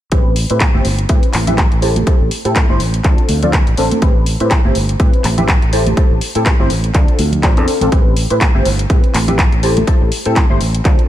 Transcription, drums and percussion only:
0.12 kick loud
0.12 closed hi-hat medium
0.36 open hi-hat medium
0.50 closed hi-hat soft
0.60 kick loud
0.60 clap loud
0.60 closed hi-hat medium
0.75 high conga medium
0.85 open hi-hat medium
0.85 tambourine medium
0.99 closed hi-hat soft
1.09 kick loud
1.09 closed hi-hat medium
1.23 closed hi-hat soft
1.23 tambourine soft
1.33 clap medium
1.33 open hi-hat loud
1.33 tambourine medium
1.33 high conga medium
1.47 closed hi-hat medium
1.47 tambourine soft
1.47 low conga medium
1.58 kick loud
1.58 clap loud
1.58 closed hi-hat medium
1.58 tambourine soft
1.72 closed hi-hat soft
1.82 open hi-hat medium
1.96 closed hi-hat medium
1.96 tambourine soft
1.96 high conga medium
2.07 kick loud
2.07 closed hi-hat medium
2.07 tambourine soft
2.31 open hi-hat medium
2.31 tambourine loud
2.45 closed hi-hat soft
2.45 tambourine soft
2.56 kick loud
2.56 clap loud
2.56 closed hi-hat medium
2.69 high conga medium
2.80 open hi-hat medium
2.80 tambourine medium
2.94 closed hi-hat medium
2.94 tambourine soft
3.04 kick loud
3.04 clap medium
3.04 closed hi-hat medium
3.18 closed hi-hat soft
3.18 tambourine soft
3.29 open hi-hat loud
3.29 tambourine medium
3.29 high conga medium
3.43 closed hi-hat soft
3.43 tambourine soft
3.43 low conga medium
3.53 kick loud
3.53 clap loud
3.53 closed hi-hat medium
3.53 tambourine soft
3.67 closed hi-hat soft
3.77 open hi-hat medium
3.77 tambourine medium
3.91 closed hi-hat soft
3.91 tambourine soft
3.91 high conga loud
4.02 kick loud
4.02 closed hi-hat medium
4.02 tambourine soft
4.26 open hi-hat medium
4.26 tambourine medium
4.40 closed hi-hat soft
4.40 tambourine soft
4.51 kick loud
4.51 clap loud
4.51 closed hi-hat medium
4.65 high conga medium
4.75 open hi-hat medium
4.75 tambourine medium
4.89 closed hi-hat soft
5.00 kick loud
5.00 closed hi-hat medium
5.13 closed hi-hat soft
5.13 tambourine soft
5.24 clap medium
5.24 open hi-hat loud
5.24 tambourine medium
5.24 high conga medium
5.38 closed hi-hat soft
5.38 tambourine soft
5.38 low conga medium
5.48 kick loud
5.48 clap loud
5.48 closed hi-hat medium
5.48 tambourine soft
5.62 closed hi-hat soft
5.73 open hi-hat medium
5.86 closed hi-hat soft
5.86 tambourine soft
5.86 high conga loud
5.97 kick loud
5.97 closed hi-hat medium
5.97 tambourine medium
6.21 open hi-hat medium
6.21 tambourine medium
6.35 closed hi-hat soft
6.35 tambourine soft
6.46 kick loud
6.46 clap loud
6.46 closed hi-hat medium
6.60 high conga medium
6.70 open hi-hat medium
6.70 tambourine medium
6.84 closed hi-hat soft
6.94 kick loud
6.94 clap medium
6.94 closed hi-hat medium
7.07 closed hi-hat soft
7.07 tambourine soft
7.19 open hi-hat loud
7.19 tambourine medium
7.19 high conga medium
7.32 closed hi-hat soft
7.32 tambourine soft
7.32 low conga medium
7.43 kick loud
7.43 clap loud
7.43 closed hi-hat medium
7.43 tambourine soft
7.57 closed hi-hat soft
7.68 open hi-hat medium
7.68 tambourine medium
7.81 closed hi-hat soft
7.81 tambourine soft
7.81 high conga medium
7.92 kick loud
7.92 closed hi-hat medium
8.17 open hi-hat medium
8.17 tambourine medium
8.30 closed hi-hat soft
8.41 kick medium
8.41 clap loud
8.41 closed hi-hat medium
8.55 high conga medium
8.65 open hi-hat medium
8.65 tambourine medium
8.79 closed hi-hat soft
8.79 tambourine soft
8.90 kick loud
8.90 closed hi-hat medium
9.04 closed hi-hat soft
9.04 tambourine soft
9.14 clap medium
9.14 open hi-hat loud
9.14 tambourine medium
9.14 high conga medium
9.28 closed hi-hat soft
9.28 tambourine soft
9.28 low conga medium
9.39 kick loud
9.39 clap loud
9.39 closed hi-hat medium
9.39 tambourine soft
9.52 closed hi-hat soft
9.63 open hi-hat medium
9.63 tambourine medium
9.77 closed hi-hat soft
9.77 tambourine soft
9.77 high conga loud
9.87 kick loud
9.87 closed hi-hat medium
9.87 tambourine medium
10.12 open hi-hat medium
10.12 tambourine medium
10.25 closed hi-hat soft
10.36 kick medium
10.36 clap loud
10.36 closed hi-hat medium
10.50 high conga medium
10.61 open hi-hat medium
10.61 tambourine medium
10.74 closed hi-hat soft
10.74 tambourine soft
10.85 kick loud
10.85 clap medium
10.85 closed hi-hat medium
10.99 closed hi-hat soft
10.99 tambourine soft

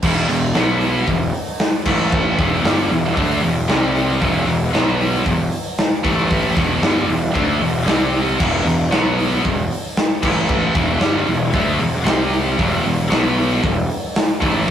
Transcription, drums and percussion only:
0.02 kick loud
0.02 crash loud
0.29 open hi-hat medium
0.55 snare loud
0.55 open hi-hat medium
0.81 open hi-hat medium
1.07 kick medium
1.07 open hi-hat medium
1.33 open hi-hat medium
1.59 snare loud
1.59 open hi-hat medium
1.85 kick loud
1.85 crash loud
2.12 kick loud
2.39 kick loud
2.39 open hi-hat medium
2.65 snare loud
2.65 open hi-hat medium
2.91 open hi-hat medium
3.17 kick loud
3.17 open hi-hat medium
3.43 open hi-hat medium
3.69 snare loud
3.69 open hi-hat medium
3.95 open hi-hat medium
4.22 kick loud
4.22 open hi-hat medium
4.48 open hi-hat medium
4.74 snare loud
4.74 open hi-hat medium
5.00 open hi-hat medium
5.26 kick medium
5.26 open hi-hat medium
5.52 open hi-hat medium
5.78 snare loud
5.78 open hi-hat medium
6.05 kick loud
6.05 open hi-hat medium
6.31 kick loud
6.31 open hi-hat medium
6.57 kick loud
6.57 open hi-hat medium
6.82 snare loud
6.82 open hi-hat medium
7.09 open hi-hat medium
7.35 kick loud
7.35 open hi-hat medium
7.61 open hi-hat medium
7.87 snare loud
7.87 open hi-hat medium
8.14 open hi-hat medium
8.40 kick loud
8.40 crash loud
8.66 open hi-hat medium
8.92 snare loud
8.92 open hi-hat medium
9.19 open hi-hat medium
9.45 kick medium
9.45 open hi-hat medium
9.71 open hi-hat medium
9.97 snare loud
9.97 open hi-hat medium
10.23 kick loud
10.23 crash loud
10.49 kick loud
10.75 kick loud
10.75 open hi-hat medium
11.00 snare loud
11.00 open hi-hat medium
11.27 open hi-hat medium
11.53 kick loud
11.53 open hi-hat loud
11.79 open hi-hat medium
12.06 snare loud
12.06 open hi-hat medium
12.33 open hi-hat medium
12.59 kick loud
12.59 open hi-hat loud
12.85 open hi-hat medium
13.11 snare loud
13.11 open hi-hat medium
13.38 open hi-hat medium
13.64 kick loud
13.64 open hi-hat medium
13.90 open hi-hat medium
14.16 snare loud
14.16 open hi-hat loud
14.42 kick loud
14.42 open hi-hat medium

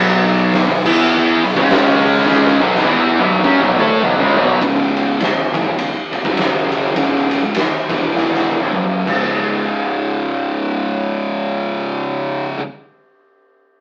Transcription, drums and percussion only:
0.27 open hi-hat medium
0.52 snare loud
0.52 open hi-hat medium
0.86 kick loud
0.86 crash loud
1.44 open hi-hat medium
1.57 kick loud
1.57 snare soft
1.69 snare loud
1.69 open hi-hat loud
2.03 open hi-hat medium
2.18 snare soft
2.30 snare medium
2.46 snare medium
2.75 snare medium
2.86 high tom medium
3.20 high tom medium
3.32 mid tom medium
3.44 kick loud
3.62 mid tom medium
3.79 mid tom medium
4.03 mid tom loud
4.20 floor tom loud
4.37 floor tom loud
4.49 floor tom loud
4.62 kick loud
4.62 ride medium
4.82 snare soft
4.97 ride medium
5.20 snare loud
5.20 ride medium
5.54 kick loud
5.54 ride medium
5.78 ride medium
6.13 ride medium
6.25 kick loud
6.37 snare loud
6.37 ride loud
6.72 ride medium
6.96 kick loud
6.96 ride medium
7.15 snare soft
7.31 ride medium
7.54 snare loud
7.54 ride loud
7.90 kick loud
7.90 ride medium
8.17 snare medium
8.34 snare medium
8.61 high tom medium
8.73 mid tom medium
9.07 kick loud
9.07 crash medium

